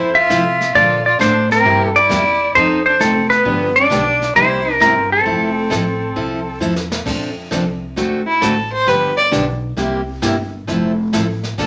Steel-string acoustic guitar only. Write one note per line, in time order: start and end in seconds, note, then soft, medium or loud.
0.30 0.42 F3 medium
0.30 0.42 C4 medium
0.30 0.42 E4 medium
0.30 0.42 A4 medium
0.75 0.98 D3 medium
0.75 0.98 F3 medium
0.75 0.98 A#3 medium
0.75 0.99 D4 medium
0.75 0.99 A4 medium
1.19 1.32 D3 medium
1.19 1.32 F3 medium
1.19 1.32 A#3 medium
1.19 1.32 D4 medium
1.19 1.32 A4 medium
1.65 1.88 C3 medium
1.65 1.88 G3 medium
1.65 1.88 A#3 medium
1.65 1.88 E4 medium
1.65 1.89 G4 medium
2.09 2.22 C3 medium
2.09 2.22 G3 medium
2.09 2.22 A#3 medium
2.09 2.22 E4 medium
2.09 2.22 G4 medium
2.56 2.79 F3 medium
2.56 2.79 C4 medium
2.56 2.79 D#4 medium
2.56 2.79 A4 medium
3.00 3.12 F3 medium
3.00 3.12 C4 medium
3.00 3.13 D#4 medium
3.00 3.13 A4 medium
3.45 3.68 D3 medium
3.45 3.68 F3 medium
3.45 3.68 B3 medium
3.45 3.69 D4 medium
3.45 3.69 G4 medium
3.90 4.02 D3 medium
3.90 4.02 F3 medium
3.90 4.03 B3 medium
3.90 4.03 D4 medium
3.90 4.03 G4 medium
4.36 4.59 C3 medium
4.36 4.59 G3 medium
4.36 4.59 A#3 medium
4.36 4.59 E4 medium
4.36 4.59 G4 medium
4.80 4.93 C3 medium
4.80 4.93 G3 medium
4.80 4.93 A#3 medium
4.80 4.93 E4 medium
4.80 4.93 G4 medium
5.25 5.49 F3 medium
5.25 5.49 C4 medium
5.25 5.49 E4 medium
5.25 5.49 A4 medium
5.70 5.83 F3 medium
5.70 5.83 C4 medium
5.70 5.83 E4 medium
5.70 5.83 A4 medium
6.16 6.39 F3 medium
6.16 6.39 C4 medium
6.16 6.39 E4 medium
6.16 6.39 A4 medium
6.60 6.73 F3 medium
6.60 6.73 C4 medium
6.60 6.73 E4 medium
6.60 6.74 A4 medium
7.05 7.29 F3 medium
7.05 7.29 C4 medium
7.05 7.29 D4 medium
7.05 7.29 A4 medium
7.51 7.63 F3 medium
7.51 7.63 C4 medium
7.51 7.64 D4 medium
7.51 7.64 A4 medium
7.96 8.19 D3 medium
7.96 8.20 A3 medium
7.96 8.20 C4 medium
7.96 8.20 F#4 medium
7.96 8.20 A4 medium
8.42 8.54 D3 medium
8.42 8.54 A3 medium
8.42 8.54 C4 medium
8.42 8.54 F#4 medium
8.42 8.54 A4 medium
8.86 9.10 D3 medium
8.86 9.10 F3 medium
8.86 9.10 B3 medium
8.86 9.10 D4 medium
8.86 9.10 G4 medium
9.31 9.44 D3 medium
9.31 9.44 F3 medium
9.31 9.44 B3 medium
9.31 9.44 D4 medium
9.31 9.44 G4 medium
9.77 10.00 C3 medium
9.77 10.00 G3 medium
9.77 10.00 A#3 medium
9.77 10.01 E4 medium
9.77 10.01 G4 medium
10.22 10.35 C3 medium
10.22 10.34 G3 medium
10.22 10.35 A#3 medium
10.22 10.35 E4 medium
10.22 10.35 G4 medium
10.67 10.91 F3 medium
10.67 10.91 C4 medium
10.67 10.91 E4 medium
10.67 10.91 A4 medium
11.13 11.25 F3 medium
11.13 11.25 C4 medium
11.13 11.25 E4 medium
11.13 11.25 A4 medium
11.58 11.67 D3 medium
11.58 11.67 F3 medium
11.58 11.67 A#3 medium
11.58 11.67 D4 medium
11.58 11.67 A4 medium